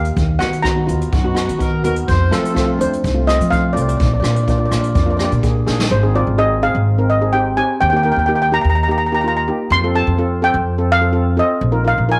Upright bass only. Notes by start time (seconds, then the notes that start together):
Already playing: D#2
0.16 D#2
0.41 D#3
0.88 D#2
1.12 F#2
1.49 D#3
1.84 D#2
2.08 F2
2.32 F3
2.80 F2
3.04 C2
3.40 F3
3.76 C2
4.00 A#1
4.22 A#2
4.71 A#1
4.95 F2
5.32 A#2
5.68 A#1
5.91 G#1
6.27 G#1
6.75 G#1
7.82 D#2
8.16 D#2
8.64 D#2
9.70 F2
10.07 F2
10.54 F2
11.61 A#1
11.98 A#1